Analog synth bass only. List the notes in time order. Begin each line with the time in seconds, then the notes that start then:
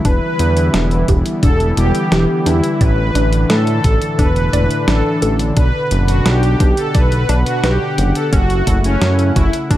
0.05 E1
0.40 E2
0.74 E1
1.08 E1
1.43 E1
1.77 E1
2.12 E1
2.46 E2
2.81 A1
3.15 A1
3.50 A2
3.84 A1
4.19 E1
4.53 E1
4.88 A1
5.22 A1
5.57 B1
5.91 F#1
6.26 B1
6.60 B1
6.95 B1
7.29 B1
7.64 B1
7.98 F#1
8.33 F#1
8.67 F#1
9.02 F#2
9.36 F#1
9.71 D2